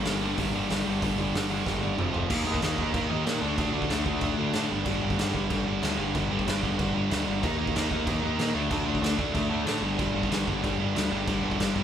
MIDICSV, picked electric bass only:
0, 0, Header, 1, 2, 480
1, 0, Start_track
1, 0, Key_signature, -2, "minor"
1, 0, Tempo, 320513
1, 1522, Time_signature, 4, 2, 24, 8
1, 17726, End_track
2, 0, Start_track
2, 0, Title_t, "Picked electric bass"
2, 0, Program_c, 0, 34
2, 82, Note_on_c, 0, 31, 95
2, 494, Note_off_c, 0, 31, 0
2, 567, Note_on_c, 0, 31, 93
2, 977, Note_off_c, 0, 31, 0
2, 1059, Note_on_c, 0, 31, 91
2, 1258, Note_off_c, 0, 31, 0
2, 1294, Note_on_c, 0, 31, 93
2, 1495, Note_off_c, 0, 31, 0
2, 1529, Note_on_c, 0, 31, 103
2, 1733, Note_off_c, 0, 31, 0
2, 1772, Note_on_c, 0, 31, 95
2, 1974, Note_off_c, 0, 31, 0
2, 2005, Note_on_c, 0, 31, 90
2, 2416, Note_off_c, 0, 31, 0
2, 2490, Note_on_c, 0, 31, 98
2, 2899, Note_off_c, 0, 31, 0
2, 2960, Note_on_c, 0, 29, 89
2, 3168, Note_off_c, 0, 29, 0
2, 3207, Note_on_c, 0, 29, 95
2, 3412, Note_off_c, 0, 29, 0
2, 3450, Note_on_c, 0, 39, 95
2, 3651, Note_off_c, 0, 39, 0
2, 3694, Note_on_c, 0, 39, 92
2, 3893, Note_off_c, 0, 39, 0
2, 3942, Note_on_c, 0, 39, 98
2, 4138, Note_off_c, 0, 39, 0
2, 4167, Note_on_c, 0, 39, 97
2, 4370, Note_off_c, 0, 39, 0
2, 4399, Note_on_c, 0, 39, 103
2, 4605, Note_off_c, 0, 39, 0
2, 4644, Note_on_c, 0, 39, 93
2, 4848, Note_off_c, 0, 39, 0
2, 4889, Note_on_c, 0, 46, 91
2, 5091, Note_off_c, 0, 46, 0
2, 5118, Note_on_c, 0, 38, 101
2, 5324, Note_off_c, 0, 38, 0
2, 5357, Note_on_c, 0, 38, 99
2, 5564, Note_off_c, 0, 38, 0
2, 5604, Note_on_c, 0, 38, 91
2, 5808, Note_off_c, 0, 38, 0
2, 5852, Note_on_c, 0, 38, 95
2, 6052, Note_off_c, 0, 38, 0
2, 6077, Note_on_c, 0, 38, 94
2, 6284, Note_off_c, 0, 38, 0
2, 6314, Note_on_c, 0, 38, 102
2, 6522, Note_off_c, 0, 38, 0
2, 6569, Note_on_c, 0, 38, 99
2, 6771, Note_off_c, 0, 38, 0
2, 6822, Note_on_c, 0, 45, 88
2, 7018, Note_off_c, 0, 45, 0
2, 7051, Note_on_c, 0, 31, 100
2, 7252, Note_off_c, 0, 31, 0
2, 7275, Note_on_c, 0, 31, 100
2, 7483, Note_off_c, 0, 31, 0
2, 7531, Note_on_c, 0, 31, 99
2, 7732, Note_off_c, 0, 31, 0
2, 7759, Note_on_c, 0, 31, 100
2, 7965, Note_off_c, 0, 31, 0
2, 7997, Note_on_c, 0, 31, 97
2, 8204, Note_off_c, 0, 31, 0
2, 8240, Note_on_c, 0, 31, 103
2, 8446, Note_off_c, 0, 31, 0
2, 8486, Note_on_c, 0, 31, 96
2, 8689, Note_off_c, 0, 31, 0
2, 8721, Note_on_c, 0, 38, 88
2, 8926, Note_off_c, 0, 38, 0
2, 8963, Note_on_c, 0, 31, 100
2, 9167, Note_off_c, 0, 31, 0
2, 9206, Note_on_c, 0, 31, 97
2, 9409, Note_off_c, 0, 31, 0
2, 9453, Note_on_c, 0, 31, 94
2, 9653, Note_off_c, 0, 31, 0
2, 9699, Note_on_c, 0, 31, 97
2, 9896, Note_off_c, 0, 31, 0
2, 9927, Note_on_c, 0, 31, 92
2, 10129, Note_off_c, 0, 31, 0
2, 10169, Note_on_c, 0, 31, 97
2, 10370, Note_off_c, 0, 31, 0
2, 10423, Note_on_c, 0, 31, 96
2, 10619, Note_off_c, 0, 31, 0
2, 10652, Note_on_c, 0, 38, 94
2, 10852, Note_off_c, 0, 38, 0
2, 10899, Note_on_c, 0, 31, 100
2, 11096, Note_off_c, 0, 31, 0
2, 11131, Note_on_c, 0, 39, 99
2, 11331, Note_off_c, 0, 39, 0
2, 11382, Note_on_c, 0, 39, 93
2, 11577, Note_off_c, 0, 39, 0
2, 11617, Note_on_c, 0, 39, 98
2, 11815, Note_off_c, 0, 39, 0
2, 11847, Note_on_c, 0, 39, 93
2, 12049, Note_off_c, 0, 39, 0
2, 12078, Note_on_c, 0, 39, 98
2, 12284, Note_off_c, 0, 39, 0
2, 12324, Note_on_c, 0, 39, 94
2, 12527, Note_off_c, 0, 39, 0
2, 12556, Note_on_c, 0, 46, 90
2, 12762, Note_off_c, 0, 46, 0
2, 12802, Note_on_c, 0, 38, 98
2, 13006, Note_off_c, 0, 38, 0
2, 13041, Note_on_c, 0, 38, 105
2, 13245, Note_off_c, 0, 38, 0
2, 13267, Note_on_c, 0, 38, 97
2, 13477, Note_off_c, 0, 38, 0
2, 13510, Note_on_c, 0, 38, 98
2, 13718, Note_off_c, 0, 38, 0
2, 13756, Note_on_c, 0, 38, 93
2, 13962, Note_off_c, 0, 38, 0
2, 13995, Note_on_c, 0, 38, 100
2, 14202, Note_off_c, 0, 38, 0
2, 14218, Note_on_c, 0, 38, 90
2, 14431, Note_off_c, 0, 38, 0
2, 14459, Note_on_c, 0, 45, 97
2, 14672, Note_off_c, 0, 45, 0
2, 14695, Note_on_c, 0, 31, 93
2, 14910, Note_off_c, 0, 31, 0
2, 14964, Note_on_c, 0, 31, 104
2, 15167, Note_off_c, 0, 31, 0
2, 15190, Note_on_c, 0, 31, 95
2, 15398, Note_off_c, 0, 31, 0
2, 15429, Note_on_c, 0, 31, 98
2, 15637, Note_off_c, 0, 31, 0
2, 15688, Note_on_c, 0, 31, 97
2, 15888, Note_off_c, 0, 31, 0
2, 15926, Note_on_c, 0, 31, 104
2, 16127, Note_off_c, 0, 31, 0
2, 16156, Note_on_c, 0, 31, 96
2, 16362, Note_off_c, 0, 31, 0
2, 16404, Note_on_c, 0, 38, 89
2, 16606, Note_off_c, 0, 38, 0
2, 16637, Note_on_c, 0, 31, 99
2, 16842, Note_off_c, 0, 31, 0
2, 16879, Note_on_c, 0, 31, 96
2, 17083, Note_off_c, 0, 31, 0
2, 17123, Note_on_c, 0, 31, 97
2, 17325, Note_off_c, 0, 31, 0
2, 17361, Note_on_c, 0, 31, 96
2, 17564, Note_off_c, 0, 31, 0
2, 17605, Note_on_c, 0, 31, 88
2, 17726, Note_off_c, 0, 31, 0
2, 17726, End_track
0, 0, End_of_file